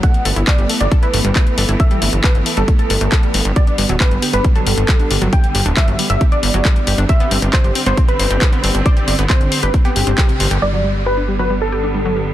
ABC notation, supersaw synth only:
X:1
M:4/4
L:1/16
Q:1/4=136
K:G
V:1 name="Supersaw synth"
f3 z d2 z d z B6 z | e3 z B2 z A z A6 z | d3 z B2 z B z A6 z | g3 z e2 z e z d6 z |
e3 z c2 z c z B6 z | d3 z c2 z B z G6 z | d3 z B2 z B z A6 z |]